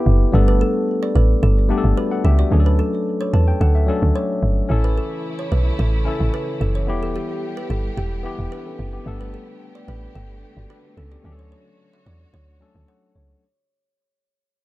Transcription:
Already playing: tine electric piano B3 E4 G4
0.06 log drum bass F#1
0.32 log drum bass G1, tine electric piano G3 A3 B3 D4 A4
0.48 kalimba B4
0.61 kalimba A4
1.03 kalimba D5
1.15 log drum bass A1, kalimba B4
1.43 log drum bass G1, kalimba A4
1.69 tine electric piano G3 A3 B3 D4 G4
1.78 tine electric piano A4
1.84 log drum bass G1
1.97 tine electric piano F#4 D5, kalimba B4
2.11 tine electric piano A4 F#5
2.24 log drum bass C#2, tine electric piano G4 E5, kalimba A4
2.39 tine electric piano F#4 D5, kalimba D5
2.51 log drum bass D2, tine electric piano F#3 A3 C#4 D4 G#4
2.60 tine electric piano A4
2.66 kalimba B4
2.79 kalimba A4
3.21 kalimba C#5
3.33 log drum bass E2, kalimba B4, tine electric piano A5
3.48 tine electric piano G5
3.61 log drum bass D2, kalimba A4, tine electric piano F#5
3.75 tine electric piano E5
3.87 tine electric piano F#3 A3 C#4 D4 A4 D5
4.02 log drum bass D2
4.15 tine electric piano C#5, kalimba C#5
4.43 log drum bass G1
4.69 log drum bass A1, string section C#3 E3 A3 E4, tine electric piano C#4 E4 A4
4.84 kalimba B4
4.98 kalimba A4
5.39 kalimba C#5
5.52 log drum bass B1, kalimba B4
5.79 log drum bass A1, kalimba A4
6.05 tine electric piano C#4 E4 A4
6.20 log drum bass A1
6.34 kalimba B4
6.61 log drum bass F#1, kalimba A4
6.75 kalimba C#5
6.87 log drum bass E1, string section G3 B3 G4, tine electric piano B3 E4 G4
7.03 kalimba A4
7.16 kalimba G4
7.57 kalimba B4
7.70 log drum bass G1, kalimba A4
7.97 log drum bass E1, kalimba G4
8.23 tine electric piano B3 E4 G4
8.39 log drum bass E1
8.52 tine electric piano D4 B4, kalimba B4
8.66 tine electric piano C#4 A4
8.79 log drum bass F#1
8.93 tine electric piano B3 G4
9.05 log drum bass G1, string section D3 A3 G4, tine electric piano G3 A3 B3 D4 A4
9.21 kalimba B4
9.34 kalimba A4
9.75 kalimba D5
9.88 log drum bass A1, kalimba B4
10.15 log drum bass G1, kalimba A4
10.57 log drum bass G1, tine electric piano F#4 D5
10.70 tine electric piano D4 B4, kalimba B4
10.97 log drum bass C#2, tine electric piano C#4 A4, kalimba A4
11.11 tine electric piano B3 G4, kalimba D5
11.23 log drum bass D2, tine electric piano F#3 A3 C#4 D4 G4, string section F#4 C#5
11.32 tine electric piano A4
11.39 kalimba C#5
11.52 kalimba C#5
11.93 kalimba E5
12.06 log drum bass E2, kalimba D5
12.34 log drum bass D2, kalimba C#5
12.60 tine electric piano F#3 A3 C#4 D4 A4 A5
12.75 log drum bass D2
12.88 kalimba C#5, tine electric piano F#5
13.15 log drum bass C#2, tine electric piano C#5

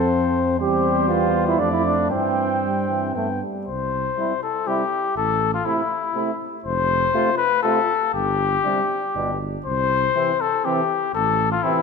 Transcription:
Already playing: tuba F2, trombone F3, french horn C4, trumpet C5
0.59 tuba E2, trombone G3, french horn C4, flugelhorn G4, trumpet C5
1.08 french horn B3, flugelhorn F4
1.46 flugelhorn E4
1.58 tuba F2, trombone F3, french horn A3, flugelhorn D4, trumpet D5
1.71 flugelhorn E4
1.84 flugelhorn D4
2.10 tuba G2, trombone E3, flugelhorn C4, french horn C4, trumpet G5
2.63 trombone G3
2.89 trombone E3
3.15 tuba G2, trombone A3, french horn B3, trumpet G5
3.42 trombone G3
3.67 tuba C2, trumpet C5
4.17 trombone C3, french horn G3, flugelhorn E4
4.43 trumpet A4
4.67 trombone C3, french horn G3, flugelhorn E4, trumpet G4
5.17 tuba A1, trumpet A4
5.54 trumpet F4
5.65 trombone C3, french horn A3, trumpet E4, flugelhorn E4
6.14 trombone C3, french horn A3, flugelhorn E4
6.64 tuba F1, trumpet C5
7.14 trombone C3, french horn A3, flugelhorn F4
7.37 trumpet B4
7.63 trombone C3, french horn A3, flugelhorn F4, trumpet A4
8.14 tuba G1, trumpet G4
8.63 trombone C3, french horn G3, flugelhorn D4
9.14 tuba G1, trombone B2, french horn G3, flugelhorn D4
9.66 tuba C2, trumpet C5
10.15 trombone C3, french horn E3, flugelhorn C4
10.41 trumpet A4
10.65 trombone C3, french horn E3, flugelhorn C4, trumpet G4
11.14 tuba A1, trumpet A4
11.52 trumpet F4
11.63 trombone C3, french horn E3, flugelhorn C4, trumpet E4

